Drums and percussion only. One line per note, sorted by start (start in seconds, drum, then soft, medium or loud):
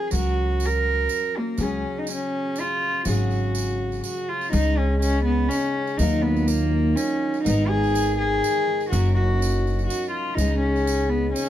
0.11 tambourine medium
0.60 tambourine medium
1.09 tambourine medium
1.58 tambourine medium
2.07 tambourine medium
2.56 tambourine medium
3.05 tambourine medium
3.31 tambourine soft
3.55 tambourine medium
3.92 tambourine soft
4.04 tambourine medium
4.16 tambourine soft
4.41 tambourine soft
4.53 tambourine medium
5.02 tambourine loud
5.51 tambourine loud
5.87 tambourine soft
5.99 tambourine loud
6.37 tambourine soft
6.48 tambourine loud
6.97 tambourine loud
7.34 tambourine soft
7.46 tambourine medium
7.83 tambourine soft
7.95 tambourine loud
8.44 tambourine loud
8.81 tambourine soft
8.93 tambourine loud
9.05 tambourine soft
9.42 tambourine loud
9.67 tambourine soft
9.79 tambourine soft
9.90 tambourine medium
10.38 tambourine loud
10.76 tambourine soft
10.87 tambourine loud
11.36 tambourine medium